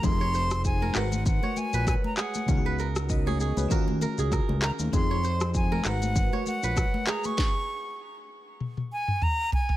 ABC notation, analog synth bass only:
X:1
M:4/4
L:1/16
Q:"Swing 16ths" 1/4=98
K:Abdor
V:1 name="Analog synth bass" clef=bass
F,,,6 A,,,4 z B,,,2 z3 | D,,6- D,, D,, E,,3 D,,2 D,,2 E,, | F,,6 A,,,4 z B,,,2 z3 | z16 |]